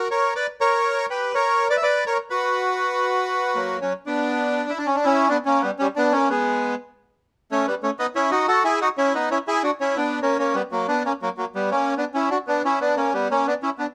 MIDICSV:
0, 0, Header, 1, 2, 480
1, 0, Start_track
1, 0, Key_signature, 2, "minor"
1, 0, Tempo, 492611
1, 341, Time_signature, 4, 2, 24, 8
1, 9463, Tempo, 497512
1, 13546, End_track
2, 0, Start_track
2, 0, Title_t, "Bandoneon"
2, 0, Program_c, 0, 23
2, 106, Note_on_c, 0, 73, 84
2, 110, Note_on_c, 0, 70, 71
2, 327, Note_off_c, 0, 73, 0
2, 328, Note_off_c, 0, 70, 0
2, 344, Note_on_c, 0, 74, 90
2, 351, Note_on_c, 0, 71, 70
2, 451, Note_off_c, 0, 74, 0
2, 457, Note_off_c, 0, 71, 0
2, 591, Note_on_c, 0, 73, 99
2, 592, Note_on_c, 0, 70, 79
2, 1032, Note_off_c, 0, 73, 0
2, 1033, Note_off_c, 0, 70, 0
2, 1075, Note_on_c, 0, 71, 76
2, 1077, Note_on_c, 0, 67, 63
2, 1289, Note_off_c, 0, 67, 0
2, 1311, Note_off_c, 0, 71, 0
2, 1311, Note_on_c, 0, 73, 90
2, 1315, Note_on_c, 0, 70, 70
2, 1634, Note_off_c, 0, 73, 0
2, 1636, Note_off_c, 0, 70, 0
2, 1657, Note_on_c, 0, 74, 82
2, 1667, Note_on_c, 0, 71, 69
2, 1716, Note_off_c, 0, 74, 0
2, 1722, Note_off_c, 0, 71, 0
2, 1724, Note_on_c, 0, 76, 74
2, 1781, Note_on_c, 0, 71, 66
2, 1781, Note_on_c, 0, 74, 87
2, 1787, Note_off_c, 0, 76, 0
2, 1991, Note_off_c, 0, 71, 0
2, 1991, Note_off_c, 0, 74, 0
2, 2010, Note_on_c, 0, 73, 78
2, 2014, Note_on_c, 0, 70, 63
2, 2117, Note_off_c, 0, 73, 0
2, 2121, Note_off_c, 0, 70, 0
2, 2243, Note_on_c, 0, 71, 77
2, 2252, Note_on_c, 0, 66, 60
2, 3462, Note_on_c, 0, 58, 65
2, 3468, Note_on_c, 0, 54, 53
2, 3668, Note_off_c, 0, 71, 0
2, 3673, Note_off_c, 0, 66, 0
2, 3693, Note_off_c, 0, 58, 0
2, 3696, Note_off_c, 0, 54, 0
2, 3717, Note_on_c, 0, 61, 73
2, 3726, Note_on_c, 0, 54, 55
2, 3827, Note_off_c, 0, 61, 0
2, 3834, Note_off_c, 0, 54, 0
2, 3958, Note_on_c, 0, 62, 80
2, 3969, Note_on_c, 0, 59, 62
2, 4540, Note_off_c, 0, 59, 0
2, 4574, Note_on_c, 0, 64, 85
2, 4591, Note_off_c, 0, 62, 0
2, 4659, Note_on_c, 0, 62, 88
2, 4661, Note_off_c, 0, 64, 0
2, 4740, Note_on_c, 0, 61, 80
2, 4747, Note_off_c, 0, 62, 0
2, 4825, Note_on_c, 0, 62, 78
2, 4831, Note_off_c, 0, 61, 0
2, 4909, Note_on_c, 0, 64, 95
2, 4917, Note_off_c, 0, 62, 0
2, 4931, Note_on_c, 0, 61, 75
2, 5140, Note_off_c, 0, 64, 0
2, 5151, Note_off_c, 0, 61, 0
2, 5152, Note_on_c, 0, 62, 99
2, 5169, Note_on_c, 0, 59, 75
2, 5227, Note_off_c, 0, 62, 0
2, 5241, Note_off_c, 0, 59, 0
2, 5315, Note_on_c, 0, 61, 87
2, 5334, Note_on_c, 0, 58, 70
2, 5469, Note_off_c, 0, 61, 0
2, 5474, Note_on_c, 0, 59, 81
2, 5479, Note_off_c, 0, 58, 0
2, 5495, Note_on_c, 0, 55, 62
2, 5549, Note_off_c, 0, 59, 0
2, 5565, Note_off_c, 0, 55, 0
2, 5640, Note_on_c, 0, 61, 91
2, 5662, Note_on_c, 0, 55, 70
2, 5714, Note_off_c, 0, 61, 0
2, 5730, Note_off_c, 0, 55, 0
2, 5807, Note_on_c, 0, 62, 92
2, 5825, Note_on_c, 0, 59, 74
2, 5963, Note_on_c, 0, 61, 88
2, 5965, Note_off_c, 0, 59, 0
2, 5971, Note_off_c, 0, 62, 0
2, 5984, Note_on_c, 0, 58, 70
2, 6124, Note_off_c, 0, 58, 0
2, 6130, Note_off_c, 0, 61, 0
2, 6134, Note_on_c, 0, 59, 85
2, 6145, Note_on_c, 0, 56, 64
2, 6574, Note_off_c, 0, 59, 0
2, 6580, Note_off_c, 0, 56, 0
2, 7322, Note_on_c, 0, 57, 72
2, 7323, Note_on_c, 0, 61, 95
2, 7465, Note_off_c, 0, 57, 0
2, 7466, Note_off_c, 0, 61, 0
2, 7478, Note_on_c, 0, 59, 89
2, 7483, Note_on_c, 0, 55, 69
2, 7548, Note_off_c, 0, 59, 0
2, 7552, Note_off_c, 0, 55, 0
2, 7628, Note_on_c, 0, 57, 70
2, 7631, Note_on_c, 0, 61, 83
2, 7700, Note_off_c, 0, 57, 0
2, 7702, Note_off_c, 0, 61, 0
2, 7787, Note_on_c, 0, 59, 74
2, 7787, Note_on_c, 0, 63, 96
2, 7858, Note_off_c, 0, 63, 0
2, 7859, Note_off_c, 0, 59, 0
2, 7946, Note_on_c, 0, 64, 91
2, 7947, Note_on_c, 0, 61, 76
2, 8094, Note_off_c, 0, 61, 0
2, 8094, Note_off_c, 0, 64, 0
2, 8098, Note_on_c, 0, 63, 76
2, 8101, Note_on_c, 0, 66, 98
2, 8246, Note_off_c, 0, 66, 0
2, 8249, Note_off_c, 0, 63, 0
2, 8261, Note_on_c, 0, 66, 81
2, 8266, Note_on_c, 0, 69, 111
2, 8410, Note_off_c, 0, 66, 0
2, 8413, Note_off_c, 0, 69, 0
2, 8420, Note_on_c, 0, 68, 104
2, 8425, Note_on_c, 0, 64, 86
2, 8570, Note_off_c, 0, 68, 0
2, 8572, Note_off_c, 0, 64, 0
2, 8589, Note_on_c, 0, 63, 77
2, 8590, Note_on_c, 0, 66, 104
2, 8659, Note_off_c, 0, 63, 0
2, 8660, Note_off_c, 0, 66, 0
2, 8748, Note_on_c, 0, 61, 79
2, 8749, Note_on_c, 0, 64, 97
2, 8893, Note_off_c, 0, 61, 0
2, 8909, Note_off_c, 0, 64, 0
2, 8912, Note_on_c, 0, 59, 73
2, 8912, Note_on_c, 0, 63, 91
2, 9055, Note_off_c, 0, 59, 0
2, 9055, Note_off_c, 0, 63, 0
2, 9073, Note_on_c, 0, 61, 72
2, 9075, Note_on_c, 0, 64, 89
2, 9142, Note_off_c, 0, 61, 0
2, 9144, Note_off_c, 0, 64, 0
2, 9232, Note_on_c, 0, 64, 74
2, 9237, Note_on_c, 0, 68, 103
2, 9376, Note_off_c, 0, 64, 0
2, 9378, Note_off_c, 0, 68, 0
2, 9386, Note_on_c, 0, 62, 73
2, 9393, Note_on_c, 0, 66, 91
2, 9457, Note_off_c, 0, 62, 0
2, 9463, Note_off_c, 0, 66, 0
2, 9553, Note_on_c, 0, 61, 66
2, 9561, Note_on_c, 0, 64, 92
2, 9696, Note_off_c, 0, 61, 0
2, 9709, Note_on_c, 0, 59, 71
2, 9712, Note_on_c, 0, 62, 91
2, 9715, Note_off_c, 0, 64, 0
2, 9928, Note_off_c, 0, 59, 0
2, 9930, Note_off_c, 0, 62, 0
2, 9954, Note_on_c, 0, 58, 75
2, 9958, Note_on_c, 0, 61, 90
2, 10097, Note_off_c, 0, 58, 0
2, 10104, Note_off_c, 0, 61, 0
2, 10112, Note_on_c, 0, 58, 68
2, 10119, Note_on_c, 0, 61, 85
2, 10256, Note_off_c, 0, 58, 0
2, 10268, Note_on_c, 0, 55, 69
2, 10273, Note_on_c, 0, 59, 89
2, 10275, Note_off_c, 0, 61, 0
2, 10338, Note_off_c, 0, 55, 0
2, 10343, Note_off_c, 0, 59, 0
2, 10430, Note_on_c, 0, 54, 72
2, 10438, Note_on_c, 0, 58, 90
2, 10575, Note_off_c, 0, 54, 0
2, 10580, Note_off_c, 0, 58, 0
2, 10589, Note_on_c, 0, 59, 65
2, 10593, Note_on_c, 0, 62, 90
2, 10735, Note_off_c, 0, 59, 0
2, 10737, Note_off_c, 0, 62, 0
2, 10755, Note_on_c, 0, 58, 67
2, 10763, Note_on_c, 0, 61, 84
2, 10824, Note_off_c, 0, 58, 0
2, 10830, Note_off_c, 0, 61, 0
2, 10918, Note_on_c, 0, 54, 67
2, 10923, Note_on_c, 0, 58, 92
2, 10986, Note_off_c, 0, 54, 0
2, 10991, Note_off_c, 0, 58, 0
2, 11067, Note_on_c, 0, 54, 60
2, 11077, Note_on_c, 0, 58, 80
2, 11138, Note_off_c, 0, 54, 0
2, 11146, Note_off_c, 0, 58, 0
2, 11237, Note_on_c, 0, 55, 63
2, 11240, Note_on_c, 0, 59, 84
2, 11382, Note_off_c, 0, 55, 0
2, 11383, Note_off_c, 0, 59, 0
2, 11389, Note_on_c, 0, 58, 67
2, 11395, Note_on_c, 0, 61, 91
2, 11614, Note_off_c, 0, 58, 0
2, 11617, Note_off_c, 0, 61, 0
2, 11645, Note_on_c, 0, 59, 61
2, 11651, Note_on_c, 0, 62, 85
2, 11714, Note_off_c, 0, 59, 0
2, 11719, Note_off_c, 0, 62, 0
2, 11808, Note_on_c, 0, 61, 66
2, 11820, Note_on_c, 0, 64, 84
2, 11950, Note_off_c, 0, 61, 0
2, 11956, Note_off_c, 0, 64, 0
2, 11960, Note_on_c, 0, 62, 69
2, 11971, Note_on_c, 0, 66, 83
2, 12031, Note_off_c, 0, 62, 0
2, 12039, Note_off_c, 0, 66, 0
2, 12126, Note_on_c, 0, 59, 72
2, 12138, Note_on_c, 0, 62, 89
2, 12268, Note_off_c, 0, 59, 0
2, 12275, Note_off_c, 0, 62, 0
2, 12296, Note_on_c, 0, 61, 72
2, 12304, Note_on_c, 0, 64, 91
2, 12433, Note_off_c, 0, 61, 0
2, 12437, Note_off_c, 0, 64, 0
2, 12448, Note_on_c, 0, 59, 67
2, 12457, Note_on_c, 0, 62, 89
2, 12588, Note_off_c, 0, 59, 0
2, 12593, Note_off_c, 0, 62, 0
2, 12597, Note_on_c, 0, 58, 67
2, 12609, Note_on_c, 0, 61, 81
2, 12742, Note_off_c, 0, 58, 0
2, 12763, Note_off_c, 0, 61, 0
2, 12764, Note_on_c, 0, 55, 62
2, 12769, Note_on_c, 0, 59, 82
2, 12905, Note_off_c, 0, 55, 0
2, 12908, Note_off_c, 0, 59, 0
2, 12930, Note_on_c, 0, 58, 65
2, 12936, Note_on_c, 0, 61, 87
2, 13068, Note_off_c, 0, 58, 0
2, 13085, Note_off_c, 0, 61, 0
2, 13089, Note_on_c, 0, 59, 69
2, 13094, Note_on_c, 0, 62, 88
2, 13155, Note_off_c, 0, 59, 0
2, 13160, Note_off_c, 0, 62, 0
2, 13239, Note_on_c, 0, 61, 64
2, 13245, Note_on_c, 0, 64, 81
2, 13307, Note_off_c, 0, 61, 0
2, 13312, Note_off_c, 0, 64, 0
2, 13390, Note_on_c, 0, 59, 64
2, 13403, Note_on_c, 0, 62, 81
2, 13460, Note_off_c, 0, 59, 0
2, 13470, Note_off_c, 0, 62, 0
2, 13546, End_track
0, 0, End_of_file